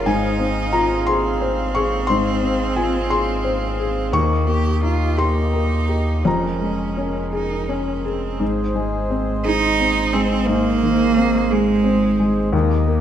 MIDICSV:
0, 0, Header, 1, 5, 480
1, 0, Start_track
1, 0, Key_signature, -4, "major"
1, 0, Tempo, 678733
1, 44, Time_signature, 6, 3, 24, 8
1, 2924, Tempo, 698487
1, 3884, Tempo, 720288
1, 5804, Tempo, 685714
1, 9020, End_track
2, 0, Start_track
2, 0, Title_t, "Harmonium"
2, 0, Program_c, 0, 20
2, 0, Note_on_c, 0, 77, 56
2, 51, Note_on_c, 0, 60, 62
2, 52, Note_on_c, 0, 68, 62
2, 2918, Note_off_c, 0, 77, 0
2, 2925, Note_on_c, 0, 58, 61
2, 2926, Note_off_c, 0, 60, 0
2, 2927, Note_off_c, 0, 68, 0
2, 2927, Note_on_c, 0, 75, 58
2, 2929, Note_on_c, 0, 67, 53
2, 4362, Note_on_c, 0, 68, 43
2, 4365, Note_on_c, 0, 56, 43
2, 4366, Note_off_c, 0, 58, 0
2, 4366, Note_off_c, 0, 75, 0
2, 4367, Note_off_c, 0, 67, 0
2, 4368, Note_on_c, 0, 70, 44
2, 5795, Note_off_c, 0, 56, 0
2, 5801, Note_off_c, 0, 68, 0
2, 5805, Note_off_c, 0, 70, 0
2, 5805, Note_on_c, 0, 56, 59
2, 5809, Note_on_c, 0, 72, 64
2, 5811, Note_on_c, 0, 68, 56
2, 8660, Note_off_c, 0, 56, 0
2, 8662, Note_off_c, 0, 72, 0
2, 8663, Note_off_c, 0, 68, 0
2, 8689, Note_on_c, 0, 58, 64
2, 8689, Note_on_c, 0, 67, 64
2, 8694, Note_on_c, 0, 75, 65
2, 9020, Note_off_c, 0, 58, 0
2, 9020, Note_off_c, 0, 67, 0
2, 9020, Note_off_c, 0, 75, 0
2, 9020, End_track
3, 0, Start_track
3, 0, Title_t, "Felt piano"
3, 0, Program_c, 1, 0
3, 0, Control_c, 1, 64, 127
3, 42, Note_on_c, 1, 44, 70
3, 44, Note_on_c, 1, 80, 77
3, 57, Control_c, 1, 64, 0
3, 155, Control_c, 1, 64, 127
3, 277, Note_on_c, 1, 60, 41
3, 493, Note_off_c, 1, 80, 0
3, 514, Note_on_c, 1, 82, 76
3, 515, Note_on_c, 1, 65, 57
3, 662, Note_off_c, 1, 60, 0
3, 739, Note_off_c, 1, 82, 0
3, 753, Note_on_c, 1, 84, 86
3, 763, Note_on_c, 1, 68, 55
3, 901, Note_off_c, 1, 65, 0
3, 1002, Note_on_c, 1, 72, 63
3, 1145, Note_off_c, 1, 68, 0
3, 1208, Note_off_c, 1, 84, 0
3, 1235, Note_on_c, 1, 85, 77
3, 1243, Note_on_c, 1, 68, 54
3, 1384, Note_off_c, 1, 72, 0
3, 1450, Note_off_c, 1, 44, 0
3, 1459, Note_off_c, 1, 85, 0
3, 1464, Note_on_c, 1, 84, 89
3, 1480, Note_on_c, 1, 44, 71
3, 1493, Control_c, 1, 64, 0
3, 1586, Control_c, 1, 64, 127
3, 1624, Note_off_c, 1, 68, 0
3, 1714, Note_on_c, 1, 60, 43
3, 1923, Note_off_c, 1, 84, 0
3, 1955, Note_on_c, 1, 65, 48
3, 1955, Note_on_c, 1, 80, 70
3, 2101, Note_off_c, 1, 60, 0
3, 2180, Note_off_c, 1, 80, 0
3, 2192, Note_on_c, 1, 68, 49
3, 2195, Note_on_c, 1, 84, 82
3, 2341, Note_off_c, 1, 65, 0
3, 2435, Note_on_c, 1, 72, 56
3, 2581, Note_off_c, 1, 68, 0
3, 2681, Note_on_c, 1, 68, 47
3, 2823, Note_off_c, 1, 72, 0
3, 2892, Note_off_c, 1, 84, 0
3, 2895, Note_off_c, 1, 44, 0
3, 2919, Note_on_c, 1, 39, 59
3, 2923, Note_off_c, 1, 68, 0
3, 2923, Note_on_c, 1, 85, 86
3, 2936, Control_c, 1, 64, 0
3, 3041, Control_c, 1, 64, 127
3, 3160, Note_on_c, 1, 58, 40
3, 3396, Note_on_c, 1, 63, 40
3, 3543, Note_off_c, 1, 58, 0
3, 3612, Note_off_c, 1, 85, 0
3, 3638, Note_on_c, 1, 67, 42
3, 3645, Note_on_c, 1, 84, 73
3, 3783, Note_off_c, 1, 63, 0
3, 3883, Note_on_c, 1, 70, 44
3, 4025, Note_off_c, 1, 67, 0
3, 4122, Note_on_c, 1, 67, 38
3, 4267, Note_off_c, 1, 70, 0
3, 4336, Note_off_c, 1, 39, 0
3, 4340, Note_off_c, 1, 84, 0
3, 4363, Note_on_c, 1, 41, 51
3, 4365, Note_off_c, 1, 67, 0
3, 4376, Note_on_c, 1, 82, 58
3, 4377, Control_c, 1, 64, 0
3, 4495, Control_c, 1, 64, 127
3, 4603, Note_on_c, 1, 56, 32
3, 4844, Note_on_c, 1, 61, 39
3, 4989, Note_off_c, 1, 56, 0
3, 5081, Note_on_c, 1, 68, 40
3, 5228, Note_off_c, 1, 61, 0
3, 5320, Note_on_c, 1, 61, 42
3, 5467, Note_off_c, 1, 68, 0
3, 5546, Note_off_c, 1, 82, 0
3, 5563, Note_on_c, 1, 68, 38
3, 5707, Note_off_c, 1, 61, 0
3, 5776, Note_off_c, 1, 41, 0
3, 5791, Note_on_c, 1, 44, 64
3, 5801, Note_off_c, 1, 68, 0
3, 5815, Control_c, 1, 64, 0
3, 5949, Control_c, 1, 64, 127
3, 6039, Note_on_c, 1, 56, 47
3, 6287, Note_on_c, 1, 60, 53
3, 6430, Note_off_c, 1, 56, 0
3, 6527, Note_on_c, 1, 68, 55
3, 6673, Note_off_c, 1, 60, 0
3, 6774, Note_on_c, 1, 60, 54
3, 6911, Note_off_c, 1, 68, 0
3, 7011, Note_on_c, 1, 56, 52
3, 7154, Note_off_c, 1, 60, 0
3, 7214, Note_off_c, 1, 44, 0
3, 7250, Note_on_c, 1, 44, 68
3, 7262, Control_c, 1, 64, 0
3, 7390, Control_c, 1, 64, 127
3, 7394, Note_off_c, 1, 56, 0
3, 7493, Note_on_c, 1, 51, 50
3, 7734, Note_on_c, 1, 60, 57
3, 7876, Note_off_c, 1, 51, 0
3, 7971, Note_on_c, 1, 68, 53
3, 8116, Note_off_c, 1, 60, 0
3, 8204, Note_on_c, 1, 60, 57
3, 8354, Note_off_c, 1, 68, 0
3, 8449, Note_on_c, 1, 56, 49
3, 8589, Note_off_c, 1, 60, 0
3, 8660, Note_off_c, 1, 44, 0
3, 8683, Note_on_c, 1, 39, 73
3, 8687, Note_off_c, 1, 56, 0
3, 8699, Control_c, 1, 64, 0
3, 8793, Control_c, 1, 64, 127
3, 8926, Note_on_c, 1, 58, 53
3, 9020, Note_off_c, 1, 39, 0
3, 9020, Note_off_c, 1, 58, 0
3, 9020, End_track
4, 0, Start_track
4, 0, Title_t, "Cello"
4, 0, Program_c, 2, 42
4, 42, Note_on_c, 2, 63, 74
4, 758, Note_on_c, 2, 60, 76
4, 769, Note_off_c, 2, 63, 0
4, 2928, Note_on_c, 2, 58, 60
4, 2938, Note_off_c, 2, 60, 0
4, 3157, Note_on_c, 2, 67, 59
4, 3168, Note_off_c, 2, 58, 0
4, 3398, Note_off_c, 2, 67, 0
4, 3405, Note_on_c, 2, 65, 61
4, 3647, Note_on_c, 2, 63, 59
4, 3657, Note_off_c, 2, 65, 0
4, 4359, Note_on_c, 2, 61, 49
4, 4369, Note_off_c, 2, 63, 0
4, 5036, Note_off_c, 2, 61, 0
4, 5081, Note_on_c, 2, 63, 54
4, 5327, Note_on_c, 2, 61, 44
4, 5337, Note_off_c, 2, 63, 0
4, 5564, Note_on_c, 2, 60, 42
4, 5574, Note_off_c, 2, 61, 0
4, 5802, Note_off_c, 2, 60, 0
4, 6530, Note_on_c, 2, 63, 95
4, 7008, Note_on_c, 2, 60, 81
4, 7018, Note_off_c, 2, 63, 0
4, 7246, Note_on_c, 2, 58, 98
4, 7256, Note_off_c, 2, 60, 0
4, 7970, Note_on_c, 2, 56, 85
4, 7980, Note_off_c, 2, 58, 0
4, 8687, Note_off_c, 2, 56, 0
4, 9020, End_track
5, 0, Start_track
5, 0, Title_t, "Sub bass"
5, 0, Program_c, 3, 38
5, 41, Note_on_c, 3, 32, 73
5, 2917, Note_on_c, 3, 39, 66
5, 2927, Note_off_c, 3, 32, 0
5, 4357, Note_on_c, 3, 29, 67
5, 4367, Note_off_c, 3, 39, 0
5, 5789, Note_off_c, 3, 29, 0
5, 5793, Note_on_c, 3, 32, 79
5, 8683, Note_on_c, 3, 39, 80
5, 8693, Note_off_c, 3, 32, 0
5, 9020, Note_off_c, 3, 39, 0
5, 9020, End_track
0, 0, End_of_file